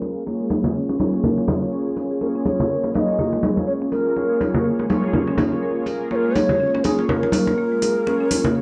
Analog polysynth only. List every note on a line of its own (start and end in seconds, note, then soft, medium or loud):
0.02 0.24 A#3 medium
0.02 0.24 F4 medium
0.02 0.24 G#4 medium
0.02 0.24 A#4 medium
0.26 0.97 A#3 medium
0.26 0.97 F4 medium
0.26 0.97 G#4 medium
0.26 0.97 C#5 medium
0.99 1.59 A#3 medium
0.99 1.59 F4 medium
0.99 1.59 G#4 medium
0.99 1.59 C#5 loud
1.62 2.19 A#3 medium
1.62 2.19 F4 medium
1.62 2.19 G#4 medium
1.62 2.19 C#5 medium
2.21 2.92 A#3 medium
2.21 2.92 F4 medium
2.21 2.92 G#4 medium
2.21 2.92 C#5 medium
2.94 3.89 A#3 medium
2.94 3.89 F4 medium
2.94 3.89 G#4 medium
2.94 3.89 C#5 medium
3.92 4.14 A#3 medium
3.92 4.14 F4 medium
3.92 4.14 G#4 medium
3.92 4.14 A#4 medium
4.16 4.87 A#3 medium
4.16 4.87 F4 medium
4.16 4.87 G#4 medium
4.16 4.87 C#5 medium
4.89 5.85 A#3 medium
4.89 5.85 F4 medium
4.89 5.85 G#4 medium
4.89 5.84 C#5 loud
5.87 6.09 A#3 medium
5.87 6.09 F4 medium
5.87 6.09 G#4 medium
5.87 6.09 A#4 medium
6.11 6.82 A#3 medium
6.11 6.82 F4 medium
6.11 6.82 G#4 medium
6.11 6.82 C#5 medium
6.84 7.80 A#3 medium
6.84 7.80 F4 medium
6.84 7.80 G#4 medium
6.84 7.80 C#5 loud
7.82 8.04 A#3 medium
7.82 8.04 F4 medium
7.82 8.04 G#4 medium
7.82 8.04 A#4 medium
8.07 8.62 A#3 medium
8.07 8.62 F4 medium
8.07 8.62 G#4 medium
8.07 8.62 C#5 medium